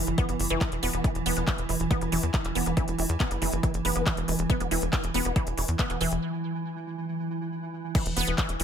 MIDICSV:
0, 0, Header, 1, 5, 480
1, 0, Start_track
1, 0, Tempo, 431655
1, 1160, Time_signature, 4, 2, 24, 8
1, 9605, End_track
2, 0, Start_track
2, 0, Title_t, "Synth arpeggio sound"
2, 0, Program_c, 0, 84
2, 199, Note_on_c, 0, 59, 97
2, 248, Note_off_c, 0, 59, 0
2, 320, Note_on_c, 0, 59, 74
2, 392, Note_off_c, 0, 59, 0
2, 560, Note_on_c, 0, 52, 106
2, 608, Note_off_c, 0, 52, 0
2, 680, Note_on_c, 0, 52, 85
2, 752, Note_off_c, 0, 52, 0
2, 920, Note_on_c, 0, 59, 102
2, 968, Note_off_c, 0, 59, 0
2, 1040, Note_on_c, 0, 59, 81
2, 1112, Note_off_c, 0, 59, 0
2, 1160, Note_on_c, 0, 52, 81
2, 1232, Note_off_c, 0, 52, 0
2, 1400, Note_on_c, 0, 59, 102
2, 1448, Note_off_c, 0, 59, 0
2, 1520, Note_on_c, 0, 59, 78
2, 1592, Note_off_c, 0, 59, 0
2, 1640, Note_on_c, 0, 52, 105
2, 1688, Note_off_c, 0, 52, 0
2, 1880, Note_on_c, 0, 52, 78
2, 1952, Note_off_c, 0, 52, 0
2, 2120, Note_on_c, 0, 59, 101
2, 2168, Note_off_c, 0, 59, 0
2, 2240, Note_on_c, 0, 59, 75
2, 2312, Note_off_c, 0, 59, 0
2, 2360, Note_on_c, 0, 52, 100
2, 2408, Note_off_c, 0, 52, 0
2, 2600, Note_on_c, 0, 52, 84
2, 2672, Note_off_c, 0, 52, 0
2, 2840, Note_on_c, 0, 59, 101
2, 2888, Note_off_c, 0, 59, 0
2, 2960, Note_on_c, 0, 59, 75
2, 3032, Note_off_c, 0, 59, 0
2, 3080, Note_on_c, 0, 52, 101
2, 3128, Note_off_c, 0, 52, 0
2, 3320, Note_on_c, 0, 52, 78
2, 3392, Note_off_c, 0, 52, 0
2, 3560, Note_on_c, 0, 59, 102
2, 3608, Note_off_c, 0, 59, 0
2, 3680, Note_on_c, 0, 59, 80
2, 3752, Note_off_c, 0, 59, 0
2, 3800, Note_on_c, 0, 52, 104
2, 3848, Note_off_c, 0, 52, 0
2, 4040, Note_on_c, 0, 52, 83
2, 4112, Note_off_c, 0, 52, 0
2, 4280, Note_on_c, 0, 59, 102
2, 4328, Note_off_c, 0, 59, 0
2, 4400, Note_on_c, 0, 59, 80
2, 4472, Note_off_c, 0, 59, 0
2, 4520, Note_on_c, 0, 52, 102
2, 4568, Note_off_c, 0, 52, 0
2, 4760, Note_on_c, 0, 52, 79
2, 4832, Note_off_c, 0, 52, 0
2, 5000, Note_on_c, 0, 59, 101
2, 5048, Note_off_c, 0, 59, 0
2, 5120, Note_on_c, 0, 59, 79
2, 5192, Note_off_c, 0, 59, 0
2, 5240, Note_on_c, 0, 52, 101
2, 5288, Note_off_c, 0, 52, 0
2, 5480, Note_on_c, 0, 52, 86
2, 5552, Note_off_c, 0, 52, 0
2, 5720, Note_on_c, 0, 59, 106
2, 5768, Note_off_c, 0, 59, 0
2, 5840, Note_on_c, 0, 59, 74
2, 5912, Note_off_c, 0, 59, 0
2, 5960, Note_on_c, 0, 52, 96
2, 6008, Note_off_c, 0, 52, 0
2, 6200, Note_on_c, 0, 52, 77
2, 6272, Note_off_c, 0, 52, 0
2, 6440, Note_on_c, 0, 59, 99
2, 6488, Note_off_c, 0, 59, 0
2, 6560, Note_on_c, 0, 59, 79
2, 6632, Note_off_c, 0, 59, 0
2, 6680, Note_on_c, 0, 52, 105
2, 6728, Note_off_c, 0, 52, 0
2, 8840, Note_on_c, 0, 52, 83
2, 8912, Note_off_c, 0, 52, 0
2, 9080, Note_on_c, 0, 59, 104
2, 9128, Note_off_c, 0, 59, 0
2, 9200, Note_on_c, 0, 59, 79
2, 9272, Note_off_c, 0, 59, 0
2, 9320, Note_on_c, 0, 52, 106
2, 9368, Note_off_c, 0, 52, 0
2, 9560, Note_on_c, 0, 52, 80
2, 9605, Note_off_c, 0, 52, 0
2, 9605, End_track
3, 0, Start_track
3, 0, Title_t, "Synth texture"
3, 0, Program_c, 1, 99
3, 0, Note_on_c, 1, 52, 84
3, 8827, Note_off_c, 1, 52, 0
3, 8840, Note_on_c, 1, 52, 83
3, 9605, Note_off_c, 1, 52, 0
3, 9605, End_track
4, 0, Start_track
4, 0, Title_t, "Analog synth bass"
4, 0, Program_c, 2, 38
4, 80, Note_on_c, 2, 30, 92
4, 162, Note_off_c, 2, 30, 0
4, 320, Note_on_c, 2, 30, 83
4, 402, Note_off_c, 2, 30, 0
4, 440, Note_on_c, 2, 30, 105
4, 522, Note_off_c, 2, 30, 0
4, 560, Note_on_c, 2, 30, 90
4, 642, Note_off_c, 2, 30, 0
4, 800, Note_on_c, 2, 28, 86
4, 882, Note_off_c, 2, 28, 0
4, 920, Note_on_c, 2, 28, 108
4, 1002, Note_off_c, 2, 28, 0
4, 1040, Note_on_c, 2, 28, 89
4, 1122, Note_off_c, 2, 28, 0
4, 1280, Note_on_c, 2, 28, 90
4, 1363, Note_off_c, 2, 28, 0
4, 1400, Note_on_c, 2, 28, 103
4, 1482, Note_off_c, 2, 28, 0
4, 1520, Note_on_c, 2, 28, 89
4, 1602, Note_off_c, 2, 28, 0
4, 1760, Note_on_c, 2, 28, 86
4, 1842, Note_off_c, 2, 28, 0
4, 1880, Note_on_c, 2, 28, 102
4, 1962, Note_off_c, 2, 28, 0
4, 2000, Note_on_c, 2, 28, 91
4, 2082, Note_off_c, 2, 28, 0
4, 2240, Note_on_c, 2, 28, 88
4, 2322, Note_off_c, 2, 28, 0
4, 2359, Note_on_c, 2, 28, 102
4, 2442, Note_off_c, 2, 28, 0
4, 2480, Note_on_c, 2, 40, 88
4, 2562, Note_off_c, 2, 40, 0
4, 2720, Note_on_c, 2, 28, 85
4, 2802, Note_off_c, 2, 28, 0
4, 2840, Note_on_c, 2, 28, 101
4, 2922, Note_off_c, 2, 28, 0
4, 2960, Note_on_c, 2, 28, 92
4, 3042, Note_off_c, 2, 28, 0
4, 3200, Note_on_c, 2, 28, 92
4, 3283, Note_off_c, 2, 28, 0
4, 3320, Note_on_c, 2, 28, 105
4, 3402, Note_off_c, 2, 28, 0
4, 3439, Note_on_c, 2, 40, 93
4, 3522, Note_off_c, 2, 40, 0
4, 3679, Note_on_c, 2, 30, 84
4, 3762, Note_off_c, 2, 30, 0
4, 3799, Note_on_c, 2, 30, 104
4, 3882, Note_off_c, 2, 30, 0
4, 3919, Note_on_c, 2, 30, 94
4, 4002, Note_off_c, 2, 30, 0
4, 4159, Note_on_c, 2, 30, 88
4, 4242, Note_off_c, 2, 30, 0
4, 4279, Note_on_c, 2, 30, 101
4, 4362, Note_off_c, 2, 30, 0
4, 4400, Note_on_c, 2, 30, 86
4, 4482, Note_off_c, 2, 30, 0
4, 4640, Note_on_c, 2, 28, 84
4, 4722, Note_off_c, 2, 28, 0
4, 4759, Note_on_c, 2, 28, 106
4, 4842, Note_off_c, 2, 28, 0
4, 4879, Note_on_c, 2, 28, 95
4, 4962, Note_off_c, 2, 28, 0
4, 5119, Note_on_c, 2, 28, 90
4, 5202, Note_off_c, 2, 28, 0
4, 5240, Note_on_c, 2, 28, 105
4, 5322, Note_off_c, 2, 28, 0
4, 5360, Note_on_c, 2, 28, 87
4, 5442, Note_off_c, 2, 28, 0
4, 5599, Note_on_c, 2, 28, 89
4, 5682, Note_off_c, 2, 28, 0
4, 5719, Note_on_c, 2, 28, 99
4, 5802, Note_off_c, 2, 28, 0
4, 5840, Note_on_c, 2, 28, 91
4, 5922, Note_off_c, 2, 28, 0
4, 6080, Note_on_c, 2, 28, 89
4, 6162, Note_off_c, 2, 28, 0
4, 6200, Note_on_c, 2, 28, 104
4, 6282, Note_off_c, 2, 28, 0
4, 6320, Note_on_c, 2, 40, 90
4, 6402, Note_off_c, 2, 40, 0
4, 6560, Note_on_c, 2, 28, 85
4, 6642, Note_off_c, 2, 28, 0
4, 6680, Note_on_c, 2, 28, 107
4, 6762, Note_off_c, 2, 28, 0
4, 6800, Note_on_c, 2, 28, 96
4, 6882, Note_off_c, 2, 28, 0
4, 8960, Note_on_c, 2, 28, 92
4, 9042, Note_off_c, 2, 28, 0
4, 9079, Note_on_c, 2, 28, 101
4, 9162, Note_off_c, 2, 28, 0
4, 9200, Note_on_c, 2, 28, 92
4, 9282, Note_off_c, 2, 28, 0
4, 9439, Note_on_c, 2, 28, 87
4, 9522, Note_off_c, 2, 28, 0
4, 9559, Note_on_c, 2, 28, 99
4, 9605, Note_off_c, 2, 28, 0
4, 9605, End_track
5, 0, Start_track
5, 0, Title_t, "Drums"
5, 80, Note_on_c, 9, 42, 52
5, 191, Note_off_c, 9, 42, 0
5, 200, Note_on_c, 9, 36, 121
5, 200, Note_on_c, 9, 42, 75
5, 311, Note_off_c, 9, 36, 0
5, 311, Note_off_c, 9, 42, 0
5, 320, Note_on_c, 9, 42, 51
5, 431, Note_off_c, 9, 42, 0
5, 440, Note_on_c, 9, 46, 109
5, 551, Note_off_c, 9, 46, 0
5, 560, Note_on_c, 9, 42, 49
5, 671, Note_off_c, 9, 42, 0
5, 680, Note_on_c, 9, 36, 127
5, 680, Note_on_c, 9, 39, 114
5, 680, Note_on_c, 9, 42, 74
5, 791, Note_off_c, 9, 36, 0
5, 791, Note_off_c, 9, 39, 0
5, 791, Note_off_c, 9, 42, 0
5, 800, Note_on_c, 9, 42, 52
5, 911, Note_off_c, 9, 42, 0
5, 920, Note_on_c, 9, 46, 95
5, 1031, Note_off_c, 9, 46, 0
5, 1040, Note_on_c, 9, 42, 51
5, 1151, Note_off_c, 9, 42, 0
5, 1160, Note_on_c, 9, 36, 121
5, 1160, Note_on_c, 9, 42, 76
5, 1271, Note_off_c, 9, 36, 0
5, 1271, Note_off_c, 9, 42, 0
5, 1280, Note_on_c, 9, 42, 50
5, 1391, Note_off_c, 9, 42, 0
5, 1400, Note_on_c, 9, 46, 107
5, 1511, Note_off_c, 9, 46, 0
5, 1520, Note_on_c, 9, 42, 51
5, 1631, Note_off_c, 9, 42, 0
5, 1640, Note_on_c, 9, 36, 121
5, 1640, Note_on_c, 9, 39, 116
5, 1640, Note_on_c, 9, 42, 81
5, 1751, Note_off_c, 9, 36, 0
5, 1751, Note_off_c, 9, 39, 0
5, 1751, Note_off_c, 9, 42, 0
5, 1760, Note_on_c, 9, 42, 48
5, 1871, Note_off_c, 9, 42, 0
5, 1880, Note_on_c, 9, 46, 93
5, 1991, Note_off_c, 9, 46, 0
5, 2000, Note_on_c, 9, 42, 51
5, 2111, Note_off_c, 9, 42, 0
5, 2120, Note_on_c, 9, 36, 116
5, 2120, Note_on_c, 9, 42, 74
5, 2231, Note_off_c, 9, 36, 0
5, 2231, Note_off_c, 9, 42, 0
5, 2240, Note_on_c, 9, 42, 51
5, 2351, Note_off_c, 9, 42, 0
5, 2360, Note_on_c, 9, 46, 105
5, 2471, Note_off_c, 9, 46, 0
5, 2480, Note_on_c, 9, 42, 50
5, 2591, Note_off_c, 9, 42, 0
5, 2600, Note_on_c, 9, 36, 121
5, 2600, Note_on_c, 9, 39, 114
5, 2600, Note_on_c, 9, 42, 76
5, 2711, Note_off_c, 9, 36, 0
5, 2711, Note_off_c, 9, 39, 0
5, 2711, Note_off_c, 9, 42, 0
5, 2720, Note_on_c, 9, 39, 36
5, 2720, Note_on_c, 9, 42, 50
5, 2831, Note_off_c, 9, 39, 0
5, 2831, Note_off_c, 9, 42, 0
5, 2840, Note_on_c, 9, 46, 89
5, 2951, Note_off_c, 9, 46, 0
5, 2960, Note_on_c, 9, 42, 52
5, 3071, Note_off_c, 9, 42, 0
5, 3080, Note_on_c, 9, 36, 121
5, 3080, Note_on_c, 9, 42, 81
5, 3191, Note_off_c, 9, 36, 0
5, 3191, Note_off_c, 9, 42, 0
5, 3200, Note_on_c, 9, 42, 54
5, 3311, Note_off_c, 9, 42, 0
5, 3320, Note_on_c, 9, 46, 101
5, 3431, Note_off_c, 9, 46, 0
5, 3440, Note_on_c, 9, 42, 53
5, 3551, Note_off_c, 9, 42, 0
5, 3560, Note_on_c, 9, 36, 111
5, 3560, Note_on_c, 9, 39, 119
5, 3560, Note_on_c, 9, 42, 79
5, 3671, Note_off_c, 9, 36, 0
5, 3671, Note_off_c, 9, 39, 0
5, 3671, Note_off_c, 9, 42, 0
5, 3680, Note_on_c, 9, 42, 53
5, 3791, Note_off_c, 9, 42, 0
5, 3800, Note_on_c, 9, 46, 90
5, 3911, Note_off_c, 9, 46, 0
5, 3920, Note_on_c, 9, 42, 52
5, 4031, Note_off_c, 9, 42, 0
5, 4040, Note_on_c, 9, 36, 109
5, 4040, Note_on_c, 9, 42, 81
5, 4151, Note_off_c, 9, 36, 0
5, 4151, Note_off_c, 9, 42, 0
5, 4160, Note_on_c, 9, 42, 54
5, 4271, Note_off_c, 9, 42, 0
5, 4280, Note_on_c, 9, 46, 103
5, 4391, Note_off_c, 9, 46, 0
5, 4400, Note_on_c, 9, 42, 52
5, 4511, Note_off_c, 9, 42, 0
5, 4520, Note_on_c, 9, 36, 112
5, 4520, Note_on_c, 9, 39, 114
5, 4520, Note_on_c, 9, 42, 76
5, 4631, Note_off_c, 9, 36, 0
5, 4631, Note_off_c, 9, 39, 0
5, 4631, Note_off_c, 9, 42, 0
5, 4640, Note_on_c, 9, 42, 52
5, 4751, Note_off_c, 9, 42, 0
5, 4760, Note_on_c, 9, 46, 90
5, 4871, Note_off_c, 9, 46, 0
5, 4880, Note_on_c, 9, 42, 53
5, 4991, Note_off_c, 9, 42, 0
5, 5000, Note_on_c, 9, 36, 114
5, 5000, Note_on_c, 9, 42, 81
5, 5111, Note_off_c, 9, 36, 0
5, 5111, Note_off_c, 9, 42, 0
5, 5120, Note_on_c, 9, 42, 56
5, 5231, Note_off_c, 9, 42, 0
5, 5240, Note_on_c, 9, 46, 103
5, 5351, Note_off_c, 9, 46, 0
5, 5360, Note_on_c, 9, 42, 56
5, 5471, Note_off_c, 9, 42, 0
5, 5480, Note_on_c, 9, 36, 113
5, 5480, Note_on_c, 9, 39, 123
5, 5480, Note_on_c, 9, 42, 85
5, 5591, Note_off_c, 9, 36, 0
5, 5591, Note_off_c, 9, 39, 0
5, 5591, Note_off_c, 9, 42, 0
5, 5600, Note_on_c, 9, 42, 55
5, 5711, Note_off_c, 9, 42, 0
5, 5720, Note_on_c, 9, 46, 91
5, 5831, Note_off_c, 9, 46, 0
5, 5840, Note_on_c, 9, 42, 56
5, 5951, Note_off_c, 9, 42, 0
5, 5960, Note_on_c, 9, 36, 114
5, 5960, Note_on_c, 9, 42, 79
5, 6071, Note_off_c, 9, 36, 0
5, 6071, Note_off_c, 9, 42, 0
5, 6080, Note_on_c, 9, 42, 56
5, 6191, Note_off_c, 9, 42, 0
5, 6200, Note_on_c, 9, 46, 99
5, 6311, Note_off_c, 9, 46, 0
5, 6319, Note_on_c, 9, 42, 57
5, 6431, Note_off_c, 9, 42, 0
5, 6440, Note_on_c, 9, 36, 110
5, 6440, Note_on_c, 9, 39, 114
5, 6440, Note_on_c, 9, 42, 81
5, 6551, Note_off_c, 9, 36, 0
5, 6551, Note_off_c, 9, 39, 0
5, 6551, Note_off_c, 9, 42, 0
5, 6560, Note_on_c, 9, 39, 34
5, 6560, Note_on_c, 9, 42, 53
5, 6671, Note_off_c, 9, 39, 0
5, 6671, Note_off_c, 9, 42, 0
5, 6680, Note_on_c, 9, 46, 87
5, 6791, Note_off_c, 9, 46, 0
5, 6800, Note_on_c, 9, 42, 53
5, 6911, Note_off_c, 9, 42, 0
5, 8840, Note_on_c, 9, 36, 121
5, 8840, Note_on_c, 9, 42, 71
5, 8840, Note_on_c, 9, 49, 104
5, 8951, Note_off_c, 9, 36, 0
5, 8951, Note_off_c, 9, 42, 0
5, 8951, Note_off_c, 9, 49, 0
5, 8960, Note_on_c, 9, 42, 72
5, 9071, Note_off_c, 9, 42, 0
5, 9080, Note_on_c, 9, 46, 110
5, 9191, Note_off_c, 9, 46, 0
5, 9200, Note_on_c, 9, 42, 68
5, 9311, Note_off_c, 9, 42, 0
5, 9320, Note_on_c, 9, 36, 117
5, 9320, Note_on_c, 9, 39, 127
5, 9320, Note_on_c, 9, 42, 73
5, 9431, Note_off_c, 9, 36, 0
5, 9431, Note_off_c, 9, 39, 0
5, 9431, Note_off_c, 9, 42, 0
5, 9440, Note_on_c, 9, 42, 70
5, 9551, Note_off_c, 9, 42, 0
5, 9560, Note_on_c, 9, 46, 108
5, 9605, Note_off_c, 9, 46, 0
5, 9605, End_track
0, 0, End_of_file